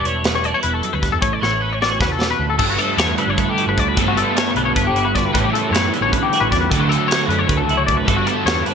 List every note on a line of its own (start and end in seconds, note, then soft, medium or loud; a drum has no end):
0.00 0.52 E1 loud
0.00 0.62 E2 medium
0.00 1.25 G3 medium
0.00 0.23 B3 medium
0.00 0.43 D4 medium
0.05 1.21 E3 medium
0.05 0.25 C#5 medium
0.05 closed hi-hat medium
0.24 1.20 B3 medium
0.24 0.35 B4 medium
0.24 snare loud
0.24 closed hi-hat medium
0.35 0.45 C#5 medium
0.44 0.54 D4 medium
0.44 0.54 D5 medium
0.44 closed hi-hat medium
0.54 1.23 E4 soft
0.54 0.63 C#5 medium
0.63 0.80 E1 medium
0.63 0.82 E2 medium
0.63 0.73 B4 medium
0.63 closed hi-hat medium
0.73 0.93 A4 medium
0.83 1.01 F#2 medium
0.83 closed hi-hat medium
0.93 1.09 D2 medium
0.93 1.12 B4 medium
1.02 1.22 G2 medium
1.02 kick medium
1.02 snare soft
1.02 closed hi-hat medium
1.12 1.21 E2 medium
1.12 1.21 A4 medium
1.22 1.38 A1 medium
1.22 1.99 A2 medium
1.22 1.33 C#5 medium
1.22 kick loud
1.22 closed hi-hat medium
1.33 1.42 D5 medium
1.41 2.00 A1 medium
1.41 2.57 E3 medium
1.41 1.62 C#5 medium
1.41 snare medium
1.61 2.57 C#4 medium
1.61 1.73 B4 medium
1.73 1.82 C#5 medium
1.81 2.57 F#4 medium
1.81 1.92 D5 medium
1.81 snare medium
1.93 2.01 C#5 medium
2.00 2.32 E2 medium
2.00 2.19 C#3 medium
2.00 2.12 B4 medium
2.00 kick loud
2.00 snare medium
2.12 2.30 A4 medium
2.19 2.38 B2 medium
2.19 snare medium
2.31 2.49 B4 medium
2.38 2.56 D2 medium
2.38 2.59 A2 medium
2.50 2.58 A4 medium
2.58 2.75 G1 medium
2.58 3.93 G2 medium
2.58 3.95 G2 medium
2.58 3.95 D3 medium
2.58 3.98 G3 medium
2.58 3.98 B3 loud
2.58 3.99 D4 loud
2.58 2.69 A4 loud
2.58 kick loud
2.58 crash loud
2.70 2.78 F#4 medium
2.78 3.38 A3 medium
2.78 2.98 A4 medium
2.78 closed hi-hat medium
2.97 3.14 E2 medium
2.97 3.18 C#5 medium
2.97 snare loud
2.97 closed hi-hat loud
3.18 3.76 D3 medium
3.18 3.29 B4 medium
3.18 closed hi-hat medium
3.27 3.44 G1 medium
3.27 3.39 C#5 medium
3.38 4.17 A3 medium
3.38 3.49 B4 medium
3.38 kick loud
3.38 closed hi-hat loud
3.49 3.68 G4 medium
3.58 3.95 F#4 medium
3.58 closed hi-hat medium
3.67 3.75 G1 medium
3.67 3.79 B4 medium
3.77 3.93 D2 medium
3.77 3.94 D3 medium
3.77 3.88 D5 medium
3.77 kick medium
3.77 closed hi-hat medium
3.88 3.98 B4 medium
3.97 5.32 G2 loud
3.97 4.05 G2 loud
3.97 5.32 G2 medium
3.97 5.33 D3 medium
3.97 5.33 G3 loud
3.97 5.33 B3 loud
3.97 5.35 D4 loud
3.97 4.07 A4 medium
3.97 kick loud
3.97 closed hi-hat loud
4.06 4.22 G1 medium
4.06 4.17 F#4 medium
4.17 4.76 A3 medium
4.17 4.36 A4 medium
4.17 closed hi-hat medium
4.36 4.55 C#5 medium
4.36 snare loud
4.36 closed hi-hat medium
4.55 4.71 B1 medium
4.55 5.15 D3 medium
4.55 4.65 B4 medium
4.55 closed hi-hat medium
4.65 4.75 C#5 medium
4.76 4.83 G1 medium
4.76 5.77 A3 medium
4.76 4.85 B4 medium
4.76 kick loud
4.76 closed hi-hat medium
4.84 4.92 F#1 medium
4.84 5.05 G4 medium
4.92 5.25 G1 medium
4.92 closed hi-hat medium
4.97 5.32 F#4 medium
5.05 5.15 B4 medium
5.15 5.32 D3 medium
5.15 5.25 D5 medium
5.15 kick medium
5.15 snare soft
5.15 closed hi-hat medium
5.25 5.33 B4 medium
5.33 5.50 A1 medium
5.33 5.92 A2 medium
5.33 6.69 A2 loud
5.33 6.70 E3 medium
5.33 6.70 G3 medium
5.33 6.70 C#4 medium
5.33 6.70 E4 medium
5.33 5.43 B4 medium
5.33 kick loud
5.33 closed hi-hat loud
5.44 5.53 G4 medium
5.53 5.73 A4 medium
5.53 closed hi-hat medium
5.71 5.87 F#2 medium
5.71 6.69 B3 medium
5.71 5.94 C#5 medium
5.71 closed hi-hat loud
5.76 snare loud
5.94 7.30 D3 medium
5.94 6.02 B4 medium
5.94 closed hi-hat medium
6.01 6.17 A1 loud
6.01 6.12 C#5 medium
6.12 6.22 B4 medium
6.12 kick loud
6.12 closed hi-hat medium
6.23 6.42 G4 medium
6.33 6.69 F#4 medium
6.33 snare soft
6.33 closed hi-hat medium
6.40 6.49 A1 medium
6.40 6.50 B4 medium
6.51 6.67 E2 medium
6.51 6.69 E2 medium
6.51 6.60 D5 medium
6.51 kick medium
6.51 snare soft
6.51 closed hi-hat medium
6.61 6.70 B4 medium
6.70 6.78 D2 medium
6.70 8.07 D2 medium
6.70 8.04 D3 loud
6.70 8.05 F#3 medium
6.70 8.07 A3 medium
6.70 8.07 D4 loud
6.70 6.80 A4 medium
6.70 kick loud
6.70 closed hi-hat loud
6.79 6.95 D2 medium
6.79 6.89 F#4 medium
6.89 7.09 A4 medium
6.89 closed hi-hat medium
7.08 7.28 C#5 medium
7.08 closed hi-hat loud
7.12 8.10 F#3 medium
7.12 snare loud
7.28 7.44 F#2 medium
7.28 7.39 B4 medium
7.28 closed hi-hat medium
7.39 7.48 C#5 medium
7.48 7.57 D2 medium
7.48 7.58 B4 medium
7.48 kick loud
7.48 closed hi-hat medium
7.57 7.66 C#2 loud
7.57 7.77 A4 medium
7.68 8.00 C#2 medium
7.68 8.06 E4 medium
7.68 closed hi-hat medium
7.77 7.86 C#5 medium
7.86 8.07 A2 medium
7.86 7.97 D5 medium
7.86 kick medium
7.86 closed hi-hat medium
7.97 8.07 B4 medium
8.05 8.23 G1 loud
8.05 8.74 G2 loud
8.05 8.74 G2 medium
8.05 8.74 D3 medium
8.05 8.65 D3 medium
8.05 8.74 G3 loud
8.05 8.28 A3 medium
8.05 8.74 B3 medium
8.05 8.74 D4 loud
8.05 8.17 A4 medium
8.05 kick loud
8.05 closed hi-hat medium
8.10 8.74 F#4 medium
8.16 8.27 F#4 medium
8.27 8.74 A3 medium
8.27 8.46 A4 medium
8.27 closed hi-hat medium
8.46 8.62 E2 medium
8.46 8.66 C#5 medium
8.46 snare loud
8.46 closed hi-hat medium
8.66 8.74 D3 medium
8.66 8.74 B4 medium
8.66 closed hi-hat medium